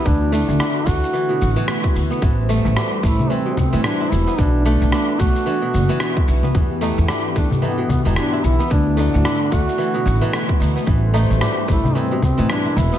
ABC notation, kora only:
X:1
M:4/4
L:1/16
Q:"Swing 16ths" 1/4=111
K:Dmix
V:1 name="Kora"
E, z A, z D2 A,2 E, B,,2 E, z E z B, | E, z A, z D2 A,2 E, B,,2 E, z E z B, | E, z A, z D2 A,2 E, B,,2 E, z E z B, | E, z A, z D2 A,2 E, B,,2 E, z E z B, |
E, z A, z D2 A,2 E, B,,2 E, z E z B, | E, z A, z D2 A,2 E, B,,2 E, z E z B, |]